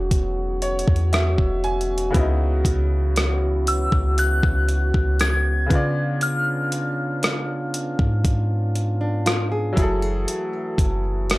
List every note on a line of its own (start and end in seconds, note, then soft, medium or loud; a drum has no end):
0.00 0.83 E1 loud
0.00 2.11 C#3 medium
0.00 2.09 D#3 medium
0.00 2.08 E3 medium
0.00 2.11 F#3 medium
0.00 2.11 F#4 medium
0.00 5.67 F#4 medium
0.00 2.12 G#4 medium
0.00 0.61 C#5 medium
0.11 9.73 B3 medium
0.11 kick medium
0.11 closed hi-hat medium
0.62 1.09 C#5 medium
0.62 closed hi-hat medium
0.79 closed hi-hat medium
0.88 1.36 E2 loud
0.88 kick medium
0.96 closed hi-hat soft
1.13 1.60 E5 medium
1.13 cross-stick loud
1.13 closed hi-hat medium
1.38 2.11 E1 loud
1.38 kick medium
1.64 2.11 G#5 medium
1.64 closed hi-hat soft
1.81 closed hi-hat soft
1.98 closed hi-hat medium
2.10 5.64 C#3 medium
2.10 5.67 E3 medium
2.10 5.65 B3 medium
2.10 5.67 C#4 medium
2.14 2.63 C#2 loud
2.14 5.67 E4 medium
2.14 5.68 F#4 medium
2.14 kick loud
2.14 closed hi-hat medium
2.19 5.69 D#4 medium
2.65 3.88 C#2 loud
2.65 kick medium
2.65 closed hi-hat medium
3.16 cross-stick loud
3.16 closed hi-hat medium
3.67 4.20 E6 medium
3.67 closed hi-hat medium
3.92 4.41 C#2 loud
3.92 kick medium
4.18 5.23 F#6 medium
4.18 closed hi-hat medium
4.43 4.92 C#2 loud
4.43 kick loud
4.69 closed hi-hat medium
4.94 5.67 C#2 loud
4.94 kick medium
5.20 6.25 G#6 loud
5.20 cross-stick loud
5.20 closed hi-hat medium
5.66 9.71 C#3 medium
5.66 9.73 B3 medium
5.70 7.95 C#3 loud
5.70 9.73 C#4 medium
5.70 9.73 D4 medium
5.70 9.73 F4 medium
5.70 9.74 F4 medium
5.70 kick loud
5.70 closed hi-hat medium
5.75 9.76 D5 medium
6.21 8.21 F6 medium
6.21 closed hi-hat medium
6.72 closed hi-hat medium
7.23 cross-stick loud
7.23 closed hi-hat medium
7.74 closed hi-hat medium
7.99 9.73 G#2 loud
7.99 kick medium
8.25 kick medium
8.25 closed hi-hat medium
8.75 closed hi-hat medium
9.01 9.25 D4 medium
9.26 9.50 F4 medium
9.26 cross-stick loud
9.26 closed hi-hat medium
9.52 9.77 G#4 medium
9.73 11.38 F#3 medium
9.73 11.38 E4 medium
9.77 10.26 F#1 loud
9.77 11.38 E3 medium
9.77 11.38 A3 medium
9.77 10.02 F#4 medium
9.77 11.38 F#4 medium
9.77 11.38 G#4 medium
9.77 kick loud
9.77 closed hi-hat medium
9.82 11.38 A4 medium
10.02 11.38 G#4 medium
10.28 closed hi-hat medium
10.78 11.38 F#1 loud
10.78 kick medium
10.78 closed hi-hat medium
11.30 cross-stick loud
11.30 closed hi-hat medium